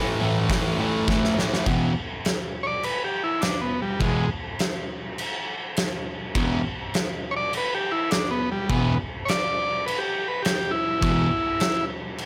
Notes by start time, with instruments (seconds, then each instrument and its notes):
Already playing: distorted electric guitar A2 E3 A3
0.20 distorted electric guitar A2 E3 A3
0.49 distorted electric guitar A2 E3 A3, kick, snare, open hi-hat
0.78 distorted electric guitar A2 E3 A3
1.08 distorted electric guitar A2 E3 A3, kick, snare
1.24 snare
1.38 distorted electric guitar A2 E3 A3, snare
1.54 snare
1.66 distorted electric guitar E2 B2 E3, kick, crash
2.25 snare, crash
2.63 transistor combo organ C#5 D5
2.83 transistor combo organ B4, crash
3.04 transistor combo organ G4
3.24 transistor combo organ E4
3.41 transistor combo organ D4, snare, crash
3.61 transistor combo organ B3
3.82 transistor combo organ G3
3.99 distorted electric guitar E2 B2 E3, transistor combo organ G#3, kick, crash
4.59 snare, crash
5.18 crash
5.76 snare, crash
6.35 distorted electric guitar E2 B2 E3, kick, crash
6.94 snare, crash
7.31 transistor combo organ C#5
7.37 transistor combo organ D5
7.53 crash
7.57 transistor combo organ B4
7.75 transistor combo organ G4
7.92 transistor combo organ E4
8.11 transistor combo organ D4, snare, crash
8.31 transistor combo organ B3
8.52 transistor combo organ G3
8.69 distorted electric guitar E2 B2 E3, transistor combo organ B3, kick, crash
9.25 transistor combo organ C#5 D5, crash
9.30 snare
9.86 transistor combo organ B4, crash
9.98 transistor combo organ G4
10.28 transistor combo organ B4
10.42 transistor combo organ G4, snare, crash
10.71 transistor combo organ E4
11.01 distorted electric guitar E2 B2 E3, kick, crash
11.60 snare, crash
12.18 crash